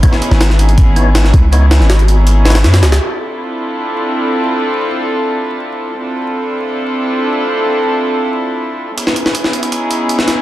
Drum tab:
HH |x---x---x---x-x-x---x---x---x---|x---x---x-x-x---x---xxx-x-x-x-x-|--------------------------------|--------------------------------|
SD |--o---o-o-o-------------o-o-----|----o-o-o-----------ooo-o-o-o-o-|--------------------------------|--------------------------------|
BD |o---------------o-----------o---|--------------------------------|--------------------------------|--------------------------------|

HH |--------------------------------|--------------------------------|x---x---x---x-x-x---x---x---x---|
SD |--------------------------------|--------------------------------|--o---o---o---------------o-o---|
BD |--------------------------------|--------------------------------|--------------------------------|